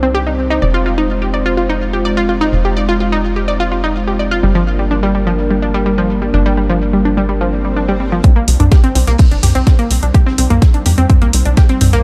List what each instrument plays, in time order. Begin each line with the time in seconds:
Already playing: analog synth bass C2, analog synth pad G3 C4 D#4 C5
0.03 synth pluck C4
0.15 synth pluck G4
0.27 synth pluck D#4
0.50 synth pluck D#4
0.62 analog synth bass F1, analog synth pad G#3 F4, synth pluck D5
0.74 synth pluck F4
0.86 synth pluck F4
0.98 synth pluck D#4
1.22 synth pluck G4
1.34 synth pluck D5
1.46 synth pluck F4
1.57 synth pluck F4
1.69 synth pluck D#4
1.93 synth pluck G4
2.05 synth pluck D5
2.17 synth pluck F4
2.29 synth pluck F4
2.41 synth pluck D#4
2.53 analog synth bass F1
2.65 synth pluck G4
2.77 synth pluck D5
2.89 synth pluck F4
3.00 synth pluck F4
3.12 synth pluck D#4
3.36 synth pluck G4
3.48 synth pluck D5
3.60 synth pluck F4
3.72 synth pluck F4
3.84 synth pluck D#4
4.07 synth pluck G4
4.19 synth pluck D5
4.31 synth pluck F4
4.43 analog synth bass G1, analog synth pad G3 A#3 D4 A#4, synth pluck G3
4.55 synth pluck F3
4.79 synth pluck G3
4.91 synth pluck D4
5.03 synth pluck G3
5.15 synth pluck G3
5.27 synth pluck F3
5.51 synth pluck G3
5.62 synth pluck D4
5.74 synth pluck G3
5.86 synth pluck G3
5.98 synth pluck F3
6.22 synth pluck G3
6.34 analog synth bass G1, synth pluck D4
6.46 synth pluck G3
6.57 synth pluck G3
6.70 synth pluck F3
6.93 synth pluck G3
7.05 synth pluck D4
7.17 synth pluck G3
7.29 synth pluck G3, swell
7.41 synth pluck F3
7.65 synth pluck G3
7.76 synth pluck D4
7.89 synth pluck G3
8.00 synth pluck G3
8.12 synth pluck F3
8.24 analog synth pad G3 C4 D#4 C5, synth pluck C4, kick, closed hi-hat, shaker
8.36 synth pluck A#3
8.48 analog synth bass C2, open hi-hat, shaker
8.60 analog synth bass C2, synth pluck D4, closed hi-hat, mid tom
8.72 synth pluck G4, kick, snare, closed hi-hat, shaker
8.84 synth pluck C4, closed hi-hat
8.95 analog synth bass C2, synth pluck C4, open hi-hat
9.07 analog synth bass C2, synth pluck A#3, closed hi-hat
9.18 kick, closed hi-hat, open hi-hat
9.31 analog synth bass G1, synth pluck D4, closed hi-hat
9.43 analog synth bass C2, synth pluck G4, snare, mid tom, open hi-hat
9.55 analog synth bass C2, synth pluck C4, closed hi-hat
9.67 synth pluck C4, kick, snare, closed hi-hat, shaker
9.79 synth pluck A#3, closed hi-hat
9.91 analog synth bass C2, open hi-hat, shaker
10.03 analog synth bass C2, synth pluck D4, closed hi-hat
10.14 synth pluck G4, kick, closed hi-hat, shaker
10.26 synth pluck C4, snare
10.38 analog synth bass C2, synth pluck C4, open hi-hat
10.50 analog synth bass C2, synth pluck A#3, closed hi-hat, mid tom
10.62 kick, snare, closed hi-hat, shaker
10.74 synth pluck D4, closed hi-hat
10.86 analog synth bass F2, synth pluck G4, open hi-hat, shaker
10.98 analog synth bass F2, synth pluck C4, closed hi-hat
11.10 synth pluck C4, kick, closed hi-hat, mid tom, shaker
11.22 analog synth bass C2, synth pluck A#3, closed hi-hat
11.33 analog synth bass C2, open hi-hat
11.45 analog synth bass C2, synth pluck D4, closed hi-hat
11.57 synth pluck G4, kick, snare, closed hi-hat, shaker
11.69 synth pluck C4, closed hi-hat
11.81 analog synth bass C2, synth pluck C4, mid tom, open hi-hat
11.93 analog synth bass C2, synth pluck A#3, closed hi-hat